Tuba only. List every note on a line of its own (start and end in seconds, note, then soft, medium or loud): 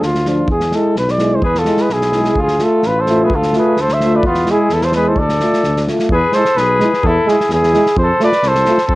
0.01 0.49 D2 medium
0.48 0.74 E2 medium
0.95 1.43 B1 medium
1.42 1.68 E2 medium
1.90 2.37 B1 medium
2.36 2.62 D2 medium
2.84 3.33 A1 medium
3.31 3.57 D2 medium
3.78 4.26 D2 medium
4.25 4.50 E2 medium
4.70 5.18 E2 medium
5.16 5.43 D2 medium
5.63 5.89 D2 loud
6.10 6.23 E2 loud
6.56 6.82 B1 medium
7.03 7.16 E2 loud
7.49 7.75 E2 loud
7.96 8.09 F2 loud
8.43 8.68 C2 medium
8.88 8.95 F2 loud